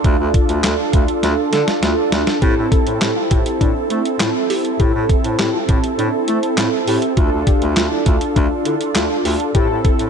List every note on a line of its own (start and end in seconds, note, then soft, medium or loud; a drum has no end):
0.00 2.38 D4 medium
0.00 2.38 F4 medium
0.00 2.38 A4 medium
0.04 0.15 D2 loud
0.04 kick loud
0.04 closed hi-hat medium
0.19 0.30 D2 loud
0.34 kick loud
0.34 closed hi-hat medium
0.49 0.60 D2 medium
0.49 closed hi-hat medium
0.64 0.75 D2 loud
0.64 snare loud
0.64 clap medium
0.64 closed hi-hat medium
0.93 1.04 D2 loud
0.93 kick loud
0.93 closed hi-hat medium
1.08 closed hi-hat medium
1.23 1.34 D2 loud
1.23 snare medium
1.23 closed hi-hat medium
1.53 1.64 D3 loud
1.53 snare medium
1.53 closed hi-hat medium
1.68 snare medium
1.68 closed hi-hat medium
1.83 1.93 D2 loud
1.83 snare medium
1.83 closed hi-hat medium
2.12 2.23 D2 loud
2.12 snare loud
2.12 closed hi-hat medium
2.27 snare loud
2.27 closed hi-hat soft
2.42 2.53 A2 loud
2.42 7.13 C4 medium
2.42 7.13 E4 medium
2.42 2.60 G4 loud
2.42 7.13 A4 medium
2.42 kick loud
2.42 closed hi-hat medium
2.57 2.68 A2 loud
2.72 2.90 A4 medium
2.72 kick loud
2.72 closed hi-hat medium
2.87 2.97 A2 medium
2.87 closed hi-hat medium
3.01 3.12 A2 loud
3.01 3.11 G4 medium
3.01 snare loud
3.01 clap medium
3.01 closed hi-hat medium
3.16 3.25 F4 medium
3.31 3.42 A2 medium
3.31 3.50 G4 medium
3.31 kick loud
3.31 closed hi-hat medium
3.46 closed hi-hat medium
3.61 3.72 A2 loud
3.61 3.79 D4 medium
3.61 kick medium
3.61 closed hi-hat medium
3.90 4.01 A3 loud
3.90 4.09 E4 medium
3.90 closed hi-hat medium
4.05 closed hi-hat medium
4.20 4.31 A2 loud
4.20 4.39 F4 medium
4.20 snare loud
4.20 clap loud
4.20 closed hi-hat medium
4.50 4.68 G4 medium
4.50 open hi-hat medium
4.65 closed hi-hat soft
4.80 4.90 A2 medium
4.80 4.98 G4 loud
4.80 kick loud
4.80 closed hi-hat medium
4.95 5.05 A2 loud
5.09 5.28 A4 medium
5.09 kick loud
5.09 closed hi-hat medium
5.24 5.35 A2 medium
5.24 closed hi-hat medium
5.39 5.50 A2 loud
5.39 5.48 G4 medium
5.39 snare loud
5.39 clap medium
5.39 closed hi-hat medium
5.54 5.63 F4 medium
5.69 5.80 A2 loud
5.69 5.87 G4 medium
5.69 kick loud
5.69 closed hi-hat medium
5.84 closed hi-hat medium
5.98 6.09 A2 loud
5.98 6.17 D4 medium
5.98 closed hi-hat medium
6.28 6.39 A3 loud
6.28 6.47 E4 medium
6.28 closed hi-hat medium
6.43 closed hi-hat medium
6.58 6.69 A2 loud
6.58 6.76 F4 medium
6.58 snare loud
6.58 clap loud
6.58 closed hi-hat medium
6.88 6.98 A2 loud
6.88 7.06 G4 medium
6.88 open hi-hat medium
7.02 closed hi-hat soft
7.17 7.28 D2 loud
7.17 9.51 D4 medium
7.17 9.51 F4 medium
7.17 7.36 F4 loud
7.17 9.51 A4 medium
7.17 kick loud
7.17 closed hi-hat medium
7.32 7.43 D2 loud
7.47 7.65 G4 medium
7.47 kick loud
7.47 closed hi-hat medium
7.62 7.73 D2 loud
7.62 closed hi-hat medium
7.76 7.87 D2 loud
7.76 7.86 F4 medium
7.76 snare loud
7.76 clap medium
7.76 closed hi-hat medium
7.92 8.01 E4 medium
8.06 8.17 D2 loud
8.06 8.25 F4 medium
8.06 kick loud
8.06 closed hi-hat medium
8.21 closed hi-hat medium
8.36 8.47 D2 loud
8.36 8.55 D4 medium
8.36 kick medium
8.36 closed hi-hat medium
8.65 8.77 D3 loud
8.65 8.84 E4 medium
8.65 closed hi-hat medium
8.81 closed hi-hat medium
8.95 9.06 D2 loud
8.95 9.14 F4 medium
8.95 snare loud
8.95 clap loud
8.95 closed hi-hat medium
9.25 9.36 D2 loud
9.25 9.44 G4 medium
9.25 open hi-hat medium
9.40 closed hi-hat medium
9.55 9.66 A2 loud
9.55 10.10 C4 medium
9.55 10.10 E4 medium
9.55 9.73 G4 loud
9.55 10.10 A4 medium
9.55 kick loud
9.55 closed hi-hat medium
9.70 9.81 A2 medium
9.85 10.03 A4 medium
9.85 kick loud
9.85 closed hi-hat medium
9.99 10.10 A2 medium
9.99 closed hi-hat medium